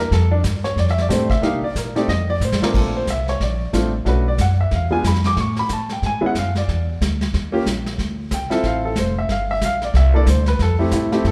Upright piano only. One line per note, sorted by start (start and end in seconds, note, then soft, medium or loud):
0.00 0.11 A#4 loud
0.13 0.32 A4 medium
0.31 0.39 D4 medium
0.64 0.77 C#5 medium
0.79 0.89 D5 medium
0.91 1.00 E5 medium
1.01 1.11 D5 medium
1.09 1.28 A3 medium
1.09 1.28 C4 medium
1.09 1.28 D4 medium
1.09 1.28 G4 medium
1.09 1.31 C5 medium
1.31 1.43 E5 medium
1.42 1.61 A#3 medium
1.42 1.61 D4 medium
1.42 1.61 D#4 medium
1.42 1.61 G4 medium
1.42 1.63 F5 medium
1.64 1.76 D5 medium
1.77 1.96 A#4 medium
1.95 2.07 A3 medium
1.95 2.07 C4 medium
1.95 2.07 D#4 medium
1.95 2.08 G4 medium
1.95 2.08 D5 medium
2.09 2.29 D#5 loud
2.30 2.42 D5 loud
2.44 2.63 C5 medium
2.62 3.05 A#2 medium
2.62 3.05 A3 medium
2.62 3.05 C4 medium
2.62 3.05 D4 medium
2.62 3.05 F4 medium
2.62 2.75 A#4 medium
2.77 2.95 A4 medium
2.97 3.08 C5 medium
3.10 3.28 E5 medium
3.29 3.41 C#5 medium
3.42 3.72 D5 medium
3.73 3.91 A3 medium
3.73 3.91 C4 medium
3.73 3.91 D4 medium
3.73 3.92 F4 medium
4.05 4.23 A3 medium
4.05 4.24 C#4 medium
4.05 4.24 D4 medium
4.05 4.24 F#4 medium
4.05 4.27 B4 medium
4.28 4.39 D5 medium
4.41 4.59 F#5 medium
4.61 4.72 E5 medium
4.75 4.93 F5 medium
4.91 5.03 G#3 medium
4.91 5.02 B3 medium
4.91 5.03 D4 medium
4.91 5.03 F4 medium
4.91 5.04 G#5 loud
5.07 5.25 B5 medium
5.26 5.37 D6 loud
5.40 5.58 C#6 medium
5.59 5.71 B5 loud
5.73 5.91 A5 medium
5.93 6.03 G5 medium
6.06 6.24 G#5 medium
6.21 6.33 G#3 medium
6.21 6.33 B3 medium
6.21 6.33 C#4 medium
6.21 6.33 E4 medium
6.26 6.37 F#5 medium
6.39 6.56 F5 medium
6.57 6.99 D5 medium
7.52 7.64 A#3 medium
7.52 7.64 C#4 medium
7.52 7.64 F4 medium
7.52 7.65 G4 medium
8.34 8.52 G5 medium
8.50 8.94 C4 medium
8.50 8.93 E4 medium
8.50 8.94 F4 medium
8.50 8.84 A4 medium
8.50 8.64 E5 medium
8.66 8.85 F5 medium
8.85 8.97 A4 medium
8.99 9.17 C5 medium
9.19 9.30 E5 medium
9.31 9.50 F5 medium
9.51 9.62 E5 loud
9.65 9.83 F5 loud
9.84 9.95 D5 medium
9.97 10.15 E5 medium
10.14 10.25 A#3 medium
10.14 10.26 D4 medium
10.14 10.26 E4 medium
10.14 10.26 A4 medium
10.14 10.28 D5 loud
10.30 10.48 C5 medium
10.48 10.60 B4 medium
10.62 10.80 A4 medium
10.79 11.10 A3 medium
10.79 11.10 C4 medium
10.79 10.92 E4 medium
10.79 11.10 G4 medium
10.93 11.11 E4 medium
11.12 11.24 A3 medium
11.12 11.24 C4 medium
11.12 11.24 E4 medium
11.12 11.25 G4 medium
11.27 11.32 A4 medium